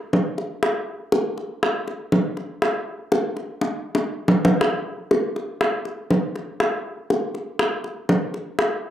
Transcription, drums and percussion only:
0.13 high bongo, low bongo
0.38 high bongo
0.63 high bongo
1.12 high bongo
1.38 high bongo
1.63 high bongo
1.88 high bongo
2.12 high bongo, low bongo
2.37 high bongo
2.62 high bongo
3.12 high bongo
3.37 high bongo
3.61 high bongo
3.95 high bongo
4.28 low bongo
4.45 low bongo
4.61 high bongo
5.11 high bongo
5.36 high bongo
5.61 high bongo
5.85 high bongo
6.10 high bongo, low bongo
6.36 high bongo
6.60 high bongo
7.10 high bongo
7.35 high bongo
7.59 high bongo
7.84 high bongo
8.09 high bongo, low bongo
8.34 high bongo
8.59 high bongo

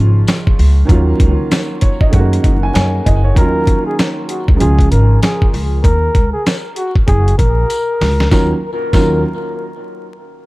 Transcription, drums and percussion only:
0.27 snare, closed hi-hat, tambourine
0.47 kick
0.59 open hi-hat
0.89 kick, closed hi-hat
1.20 kick, closed hi-hat
1.51 snare, closed hi-hat, tambourine
1.81 kick, closed hi-hat
2.01 kick
2.13 kick, closed hi-hat
2.33 closed hi-hat
2.44 kick, closed hi-hat
2.75 snare, closed hi-hat, tambourine
3.06 kick, closed hi-hat
3.36 kick, closed hi-hat
3.67 kick, closed hi-hat
3.99 snare, closed hi-hat, tambourine
4.29 closed hi-hat
4.48 kick
4.60 closed hi-hat
4.79 kick, closed hi-hat
4.92 closed hi-hat
5.22 snare, closed hi-hat, tambourine
5.42 kick
5.54 open hi-hat
5.84 kick, closed hi-hat
6.15 kick, closed hi-hat
6.46 snare, closed hi-hat, tambourine
6.76 closed hi-hat
6.96 kick
7.08 kick, closed hi-hat
7.28 closed hi-hat
7.39 kick, closed hi-hat
7.70 closed hi-hat, tambourine
8.01 snare, open hi-hat
8.20 snare
8.31 kick, snare, tambourine
8.93 kick, snare, tambourine

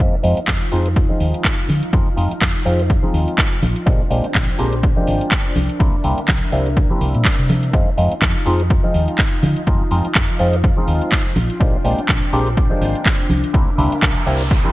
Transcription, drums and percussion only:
0.24 open hi-hat
0.37 closed hi-hat
0.48 kick, clap, closed hi-hat, high conga, shaker
0.61 shaker
0.72 open hi-hat
0.86 closed hi-hat
0.96 kick, closed hi-hat
1.10 high conga, shaker
1.20 open hi-hat
1.34 closed hi-hat, shaker
1.45 kick, clap, closed hi-hat
1.59 shaker
1.69 open hi-hat, high conga
1.83 closed hi-hat, shaker
1.93 kick, closed hi-hat
2.17 open hi-hat
2.31 closed hi-hat, shaker
2.41 kick, clap, closed hi-hat, high conga, shaker
2.55 shaker
2.66 open hi-hat
2.80 closed hi-hat
2.90 kick, closed hi-hat
3.03 high conga, shaker
3.14 open hi-hat
3.28 closed hi-hat, shaker
3.38 kick, clap, closed hi-hat
3.63 open hi-hat, high conga
3.76 closed hi-hat, shaker
3.87 kick, closed hi-hat
4.00 shaker
4.11 open hi-hat
4.24 closed hi-hat
4.35 kick, clap, closed hi-hat, high conga, shaker
4.49 shaker
4.59 open hi-hat
4.73 closed hi-hat
4.83 kick, closed hi-hat, shaker
4.96 high conga, shaker
5.07 open hi-hat
5.21 closed hi-hat, shaker
5.31 kick, clap, closed hi-hat
5.46 shaker
5.56 open hi-hat, high conga
5.69 closed hi-hat, shaker
5.80 kick, closed hi-hat
5.94 shaker
6.04 open hi-hat
6.18 closed hi-hat
6.28 kick, clap, closed hi-hat, high conga, shaker
6.43 shaker
6.52 open hi-hat
6.66 closed hi-hat, shaker
6.77 kick, closed hi-hat
6.90 high conga, shaker
7.01 open hi-hat
7.15 closed hi-hat, shaker
7.25 kick, clap, closed hi-hat
7.49 open hi-hat, high conga
7.63 closed hi-hat, shaker
7.73 kick, closed hi-hat
7.87 shaker
7.98 open hi-hat
8.12 closed hi-hat
8.22 kick, clap, closed hi-hat, high conga, shaker
8.46 open hi-hat
8.60 closed hi-hat
8.70 kick, closed hi-hat
8.84 high conga, shaker
8.94 open hi-hat
9.08 closed hi-hat, shaker
9.18 kick, clap, closed hi-hat
9.43 open hi-hat, high conga
9.56 closed hi-hat, shaker
9.67 kick, closed hi-hat
9.81 shaker
9.91 open hi-hat
10.05 closed hi-hat
10.15 kick, clap, closed hi-hat, high conga, shaker
10.29 shaker
10.39 open hi-hat
10.53 closed hi-hat
10.64 kick, closed hi-hat
10.77 high conga, shaker
10.88 open hi-hat
11.01 closed hi-hat, shaker
11.12 kick, clap, closed hi-hat
11.27 shaker
11.36 open hi-hat, high conga
11.50 closed hi-hat, shaker
11.61 kick, closed hi-hat
11.74 shaker
11.85 open hi-hat
11.98 closed hi-hat
12.09 kick, clap, closed hi-hat, high conga, shaker
12.22 shaker
12.33 open hi-hat
12.47 closed hi-hat
12.57 kick, closed hi-hat
12.71 high conga, shaker
12.82 open hi-hat
12.95 closed hi-hat, shaker
13.06 kick, clap, closed hi-hat
13.19 shaker
13.30 open hi-hat, high conga
13.44 closed hi-hat, shaker
13.54 kick, closed hi-hat, shaker
13.67 shaker
13.78 open hi-hat, low conga
13.92 closed hi-hat
14.03 kick, clap, closed hi-hat, high conga, shaker
14.17 shaker
14.27 open hi-hat
14.40 closed hi-hat
14.51 kick, closed hi-hat
14.65 high conga, shaker

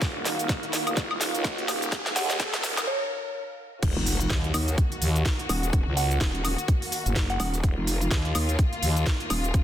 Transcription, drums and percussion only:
0.02 kick, snare, closed hi-hat, cabasa
0.25 snare, open hi-hat, cabasa
0.39 closed hi-hat, cabasa
0.49 kick, snare, closed hi-hat, cabasa
0.63 closed hi-hat
0.73 snare, open hi-hat, cabasa
0.87 closed hi-hat, cabasa, high woodblock
0.97 kick, snare, closed hi-hat, cabasa
1.11 high woodblock
1.21 snare, open hi-hat, cabasa
1.35 closed hi-hat, cabasa
1.44 kick, snare, closed hi-hat, cabasa
1.58 closed hi-hat
1.68 snare, open hi-hat, cabasa, high woodblock
1.82 closed hi-hat, cabasa
1.92 kick, snare, closed hi-hat, cabasa
2.06 snare
2.16 snare, open hi-hat, cabasa
2.30 snare, closed hi-hat, cabasa
2.40 kick, snare, closed hi-hat, cabasa
2.54 snare, closed hi-hat
2.64 snare, open hi-hat, cabasa
2.77 snare, closed hi-hat, cabasa, high woodblock
3.83 kick, closed hi-hat, crash, cabasa
4.06 open hi-hat, cabasa
4.20 closed hi-hat, cabasa
4.30 kick, snare, closed hi-hat, cabasa
4.44 closed hi-hat
4.54 open hi-hat, cabasa, high woodblock
4.68 closed hi-hat, cabasa
4.78 kick, closed hi-hat, cabasa
4.92 closed hi-hat
5.02 open hi-hat, cabasa
5.16 closed hi-hat, cabasa
5.25 kick, snare, closed hi-hat, cabasa
5.39 closed hi-hat
5.49 open hi-hat, cabasa, high woodblock
5.63 closed hi-hat, cabasa
5.73 kick, closed hi-hat, cabasa
5.97 open hi-hat, cabasa
6.11 closed hi-hat, cabasa
6.21 kick, snare, closed hi-hat, cabasa
6.35 closed hi-hat
6.45 open hi-hat, cabasa, high woodblock
6.58 closed hi-hat, cabasa
6.68 kick, closed hi-hat, cabasa
6.82 open hi-hat
6.92 open hi-hat, cabasa
7.06 closed hi-hat, cabasa
7.16 kick, snare, closed hi-hat, cabasa
7.30 closed hi-hat
7.40 open hi-hat, cabasa, high woodblock
7.54 closed hi-hat, cabasa
7.64 kick, closed hi-hat, cabasa
7.87 open hi-hat, cabasa
8.01 closed hi-hat, cabasa
8.11 kick, snare, closed hi-hat, cabasa
8.25 closed hi-hat
8.35 open hi-hat, cabasa, high woodblock
8.49 closed hi-hat, cabasa
8.59 kick, closed hi-hat, cabasa
8.73 closed hi-hat
8.83 open hi-hat, cabasa
8.96 closed hi-hat, cabasa
9.06 kick, snare, closed hi-hat, cabasa
9.20 closed hi-hat
9.30 open hi-hat, cabasa, high woodblock
9.44 closed hi-hat, cabasa
9.54 kick, closed hi-hat, cabasa

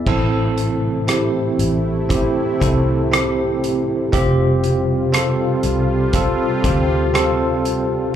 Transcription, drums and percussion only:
0.07 kick, crash
0.58 closed hi-hat
1.08 cross-stick, closed hi-hat
1.59 closed hi-hat
2.10 kick, closed hi-hat
2.62 kick, closed hi-hat
3.13 cross-stick, closed hi-hat
3.64 closed hi-hat
4.13 kick, closed hi-hat
4.64 closed hi-hat
5.14 cross-stick, closed hi-hat
5.63 closed hi-hat
6.13 kick, closed hi-hat
6.64 kick, closed hi-hat
7.15 cross-stick, closed hi-hat
7.65 closed hi-hat

